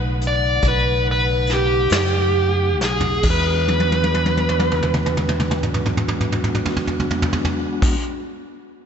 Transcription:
Already playing: fingered electric bass B1, tonewheel organ C#3 A3 D#4 F#5
0.21 closed hi-hat
0.27 lead electric guitar D5
0.62 fingered electric bass B1, kick, closed hi-hat
0.68 lead electric guitar B4
1.11 lead electric guitar B4
1.47 snare, closed hi-hat
1.53 lead electric guitar G4
1.90 fingered electric bass F#2, snare, closed hi-hat
2.80 fingered electric bass B1, snare
2.84 lead electric guitar G#4
3.00 floor tom
3.23 fingered electric bass E2, tonewheel organ G#3 B3 D4 F#4, kick, crash
3.30 lead electric guitar B4
3.68 high tom
3.80 high tom
3.92 high tom
4.04 high tom
4.14 high tom
4.26 high tom
4.37 high tom
4.49 high tom
4.59 high tom
4.71 mid tom
4.83 mid tom
4.94 mid tom
5.06 mid tom
5.17 mid tom
5.29 mid tom
5.40 mid tom
5.51 mid tom
5.63 mid tom
5.74 mid tom
5.86 mid tom
5.97 mid tom
6.08 mid tom
6.21 mid tom
6.32 mid tom
6.44 mid tom
6.55 mid tom
6.65 floor tom
6.77 floor tom
6.87 floor tom
7.00 floor tom
7.11 floor tom
7.22 floor tom
7.33 floor tom
7.45 floor tom
7.82 kick, crash

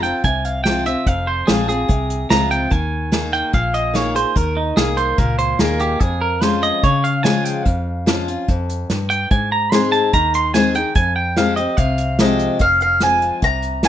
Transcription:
Already playing: fingered electric bass F1, steel-string acoustic guitar F2
0.03 steel-string acoustic guitar C4 F4, clean electric guitar G5, closed hi-hat
0.24 fingered electric bass C2, steel-string acoustic guitar C3, clean electric guitar G#5, kick, closed hi-hat
0.45 clean electric guitar F5, closed hi-hat
0.64 steel-string acoustic guitar F3 G#3 C4 F4, clean electric guitar G5, snare, closed hi-hat
0.86 steel-string acoustic guitar C4 F4, clean electric guitar E5, closed hi-hat
1.07 fingered electric bass F1, steel-string acoustic guitar F2, clean electric guitar F5, kick, closed hi-hat
1.27 clean electric guitar C5
1.47 fingered electric bass A#1, steel-string acoustic guitar F3 G#3 C4 F4, clean electric guitar G#4, snare, closed hi-hat
1.68 steel-string acoustic guitar C4 F4, clean electric guitar G#4, closed hi-hat
1.89 fingered electric bass C2, steel-string acoustic guitar C3, kick, closed hi-hat
2.10 closed hi-hat
2.30 fingered electric bass C#2, steel-string acoustic guitar F3 G#3 C4 F4, clean electric guitar A#5, snare, closed hi-hat
2.51 clean electric guitar G5, closed hi-hat
2.71 fingered electric bass D#2, steel-string acoustic guitar D#3, clean electric guitar G#5, kick, closed hi-hat
3.12 steel-string acoustic guitar D#3 A#3 D#4 G#4, snare, closed hi-hat
3.33 clean electric guitar G5, closed hi-hat
3.53 fingered electric bass A#1, steel-string acoustic guitar A#2, clean electric guitar F5, kick, closed hi-hat
3.74 clean electric guitar D#5, closed hi-hat
3.94 steel-string acoustic guitar D#3 A#3 D#4 G#4, clean electric guitar C#5, snare, closed hi-hat
4.15 steel-string acoustic guitar D#4 G#4, clean electric guitar C5, closed hi-hat
4.36 fingered electric bass D#2, steel-string acoustic guitar D#3, clean electric guitar A#4, kick, closed hi-hat
4.57 clean electric guitar D#4
4.77 fingered electric bass C2, steel-string acoustic guitar D#3 A#3 D#4 G#4, clean electric guitar G#4, snare, closed hi-hat
4.97 clean electric guitar C5, closed hi-hat
5.18 fingered electric bass C#2, steel-string acoustic guitar A#2, clean electric guitar A#4, kick, closed hi-hat
5.39 clean electric guitar C5, closed hi-hat
5.59 fingered electric bass D#2, steel-string acoustic guitar D#3 A#3 D#4 G#4, clean electric guitar A#4, snare, closed hi-hat
5.80 clean electric guitar G4, closed hi-hat
6.00 steel-string acoustic guitar F2, fingered electric bass F2, clean electric guitar G#4, kick, closed hi-hat
6.21 clean electric guitar A#4
6.41 steel-string acoustic guitar F3 G#3 C#4 F4, clean electric guitar C5, snare, closed hi-hat
6.63 clean electric guitar D#5, closed hi-hat
6.83 steel-string acoustic guitar C#3, fingered electric bass C#3, clean electric guitar C#5, kick, closed hi-hat
7.04 clean electric guitar F5, closed hi-hat
7.23 steel-string acoustic guitar F3 G#3 C#4 F4, clean electric guitar G#5, snare, closed hi-hat
7.45 clean electric guitar G5, closed hi-hat
7.65 steel-string acoustic guitar F2, fingered electric bass F2, clean electric guitar F5, kick, closed hi-hat
8.06 steel-string acoustic guitar F3 G#3 C#4 F4, snare, closed hi-hat
8.28 steel-string acoustic guitar C#4 F4, closed hi-hat
8.48 fingered electric bass F2, steel-string acoustic guitar F2, kick, closed hi-hat
8.70 closed hi-hat
8.90 fingered electric bass G2, steel-string acoustic guitar G2, snare, closed hi-hat
9.10 clean electric guitar G5, closed hi-hat
9.31 steel-string acoustic guitar G#2, fingered electric bass G#2, clean electric guitar G#5, kick, closed hi-hat
9.52 clean electric guitar A#5
9.72 steel-string acoustic guitar G#3 C4 D#4 G#4, clean electric guitar C6, snare, closed hi-hat
9.92 clean electric guitar A5, closed hi-hat
10.13 fingered electric bass D#2, steel-string acoustic guitar D#3, clean electric guitar A#5, kick, closed hi-hat
10.34 clean electric guitar C6, closed hi-hat
10.54 steel-string acoustic guitar G#3 C4 D#4 G#4, clean electric guitar G#5, snare, closed hi-hat
10.75 steel-string acoustic guitar D#4 G#4, clean electric guitar G5, closed hi-hat
10.95 steel-string acoustic guitar F2, fingered electric bass F2, clean electric guitar G#5, kick, closed hi-hat
11.16 clean electric guitar G5
11.36 steel-string acoustic guitar F3 G#3 C4 G4, clean electric guitar F5, snare, closed hi-hat
11.56 steel-string acoustic guitar C4 G4, clean electric guitar D#5, closed hi-hat
11.77 fingered electric bass C2, steel-string acoustic guitar C3, clean electric guitar F5, kick, closed hi-hat
11.98 closed hi-hat
12.19 steel-string acoustic guitar F3 G#3 C4 G4, mandolin D#5, snare, closed hi-hat
12.39 closed hi-hat
12.59 fingered electric bass F1, steel-string acoustic guitar F2, mandolin F5, kick, closed hi-hat
12.80 mandolin F5, closed hi-hat
13.00 steel-string acoustic guitar F3 G#3 C4 F4, mandolin G#5, snare, closed hi-hat
13.22 closed hi-hat
13.42 fingered electric bass C2, steel-string acoustic guitar C3, mandolin A#5, kick, closed hi-hat
13.63 closed hi-hat
13.83 steel-string acoustic guitar F3 G#3 C4, mandolin G#5, snare, closed hi-hat

